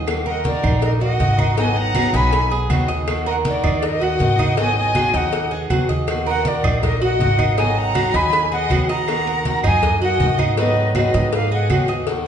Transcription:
Already playing: D#2
0.07 D#3 A#3 D#4 F#4, cowbell, high conga, claves
0.26 A#4 D#5 F#5, high conga
0.44 D#3 A#3 D#4 F#4 A#4 D5, cowbell, high conga
0.63 A#1 D#4, high conga, low conga, claves
0.82 A#4 D#5, muted steel-string acoustic guitar stroke, cowbell, high conga
1.00 A#3 D#4 F#4 D#5 F#5, high conga
1.19 G#1 D#3 A#3 D#4 F#4, cowbell, high conga
1.38 A#3 D#4 F#4, high conga, claves
1.57 D#3 F#3 B3 D#4 G#4 D#5 G#5, cowbell, high conga
1.75 F#5 A#5, high conga
1.95 D#3 F#3 B3 D#4 F#4 G#4, cowbell, high conga, claves
2.13 B1 D#4 G#5 B5, cowbell, high conga
2.33 muted steel-string acoustic guitar stroke, cowbell, high conga
2.51 B3 D#4 G#4, high conga
2.70 D#2 D#3 F#3 B3 D#4 F#4 G#4, cowbell, high conga, claves
2.88 B3 D#4 G#4 D#5, cowbell
3.07 D#3 A#3 D#4 F#4, cowbell, high conga, claves
3.26 A#4 D#5 F#5, high conga
3.45 D#3 A#3 D#4 F#4 A#4 D5, cowbell, high conga
3.64 D#2 D#4, high conga, low conga, claves
3.82 A#4 D#5, muted steel-string acoustic guitar stroke, cowbell, high conga
4.00 A#3 D#4 F#4 D#5 F#5, high conga
4.19 G#1 D#3 A#3 D#4 F#4, cowbell, high conga
4.38 A#3 D#4 F#4, high conga, claves
4.57 D#3 F#3 B3 D#4 G#4 D#5 G#5, cowbell, high conga
4.76 D#5 G#5, high conga
4.95 D#3 F#3 B3 D#4 F#4 G#4, cowbell, high conga, claves
5.13 D#2 D#4 D#5 F#5, cowbell, high conga
5.32 muted steel-string acoustic guitar stroke, cowbell, high conga
5.51 B3 D#4 G#4, high conga
5.70 D#2 D#3 F#3 B3 D#4 F#4 G#4, cowbell, high conga, claves
5.89 B3 D#4 G#4 D#5, cowbell, high conga
6.07 D#3 A#3 D#4 F#4, cowbell, high conga, claves
6.26 A#4 D#5 F#5, high conga
6.45 D#3 A#3 D#4 F#4 A#4 D5, cowbell, high conga
6.63 A#1 D#4, high conga, low conga, claves
6.83 A#4 D#5, muted steel-string acoustic guitar stroke, cowbell, high conga, low conga
7.01 A#3 D#4 F#4 D#5 F#5, high conga
7.19 G#1 D#3 A#3 D#4 F#4, cowbell, high conga
7.38 A#3 D#4 F#4, high conga, claves
7.57 D#3 F#3 B3 D#4 G#4 D#5 G#5, cowbell, high conga
7.77 F#5 A#5, high conga
7.94 D#3 F#3 B3 D#4 F#4 G#4, cowbell, high conga, claves
8.14 D#2 D#4 G#5 B5, cowbell, high conga
8.33 muted steel-string acoustic guitar stroke, cowbell, high conga
8.51 B3 D#4 G#4 D#5 F#5, high conga
8.70 D#2 D#3 F#3 B3 D#4 F#4 G#4, cowbell, high conga, claves
8.89 B3 D#4 G#4 D#5 F#5 A#5, cowbell
9.08 D#3 A#3 D#4 F#4, cowbell, high conga, claves
9.27 A#4, high conga
9.45 D#3 A#3 D#4 F#4, cowbell, high conga
9.64 F#2 D#4 D#5 G#5, high conga, low conga, claves
9.82 muted steel-string acoustic guitar stroke, cowbell, high conga, low conga
10.01 A#3 D#4 F#4 D#5 F#5, high conga
10.20 G#2 D#3 A#3 D#4 F#4, cowbell, high conga
10.38 A#3 D#4 F#4, high conga, claves
10.57 D#3 F#3 B3 D#4 G#4 B4 D#5, cowbell, high conga
10.76 high conga
10.95 D#3 F#3 B3 D#4 F#4 G#4 B4 D#5, cowbell, high conga, claves
11.14 G#2 D#4, cowbell, high conga
11.32 B4 F5, muted steel-string acoustic guitar stroke, cowbell, high conga
11.51 B3 D#4 G#4 D#5 F#5, high conga
11.70 D#2 D#3 F#3 B3 D#4 F#4 G#4, cowbell, high conga, claves
11.88 B3 D#4 G#4 D#5, cowbell
12.07 D#3 A#3 D#4 F#4, cowbell, high conga

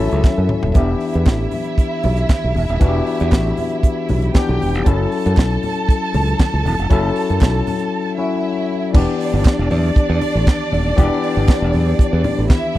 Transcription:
Already playing: F#3 C#4 A4 E5
0.00 E4 A4
0.11 C#2, closed hi-hat
0.24 kick, snare, clap, high conga
0.38 F#2
0.49 mid tom, high conga
0.63 D#1, floor tom
0.74 E1 E3 B3 D4 E4 G4 E5, kick, closed hi-hat, muted conga
1.00 open hi-hat
1.14 E2, closed hi-hat
1.26 A1, kick, snare, clap, closed hi-hat, high conga
1.51 open hi-hat, low conga
1.64 closed hi-hat
1.78 kick, closed hi-hat, muted conga
2.03 B1, open hi-hat, muted conga, low conga
2.17 closed hi-hat
2.29 kick, snare, clap, closed hi-hat, high conga
2.44 B1
2.55 E1, open hi-hat, high conga
2.69 D#1, closed hi-hat
2.80 E1 E3 B3 D4 F#4, kick, closed hi-hat, muted conga
2.89 G4
3.07 open hi-hat
3.20 E2, closed hi-hat
3.32 A1, kick, snare, clap, closed hi-hat, high conga
3.57 open hi-hat, low conga
3.70 closed hi-hat
3.83 kick, closed hi-hat, muted conga
4.09 B1, open hi-hat, muted conga, low conga
4.22 closed hi-hat
4.34 E3 B3 D4 G4 G5, kick, snare, clap, closed hi-hat, high conga
4.49 B1
4.60 E1, open hi-hat, high conga
4.75 F1, closed hi-hat
4.84 F#1 F#3 C#4 E4 A4 A5, kick, closed hi-hat, muted conga
5.12 open hi-hat
5.26 F#2, closed hi-hat
5.37 B1, kick, snare, clap, closed hi-hat, high conga
5.63 open hi-hat, low conga
5.76 closed hi-hat
5.89 kick, closed hi-hat, muted conga
6.14 C#2, open hi-hat, muted conga, low conga
6.28 closed hi-hat
6.39 kick, snare, clap, closed hi-hat, high conga
6.54 C#2
6.65 E1, open hi-hat, high conga
6.79 F1, closed hi-hat
6.89 F#1 F#3 C#4 E4 A4, kick, closed hi-hat, muted conga
7.16 open hi-hat
7.30 F#2, closed hi-hat
7.41 B1, kick, snare, clap, closed hi-hat, high conga
7.67 open hi-hat, low conga
7.79 closed hi-hat
8.18 F#3 C#4 E4 F#4 E5
8.93 E1 E3 B3 D4 G4 D5, kick, crash, muted conga
9.20 open hi-hat
9.34 G1
9.45 kick, snare, clap, closed hi-hat, high conga
9.59 E1
9.71 E2, open hi-hat, low conga
9.96 muted fingered electric bass stroke, kick, closed hi-hat
10.10 E2
10.21 open hi-hat, muted conga
10.35 A1
10.47 kick, snare, clap, closed hi-hat, high conga
10.72 D#1, open hi-hat, high conga
10.96 E1 E3 B3 D4 G4, kick, closed hi-hat, muted conga
11.23 open hi-hat
11.37 G1
11.48 kick, snare, clap, closed hi-hat, high conga
11.62 E1
11.73 E2, open hi-hat, low conga
11.99 muted fingered electric bass stroke, kick, closed hi-hat, muted conga
12.13 E2
12.24 open hi-hat, muted conga, low conga
12.38 A1
12.50 E4 E5, kick, snare, clap, closed hi-hat, high conga
12.75 high conga

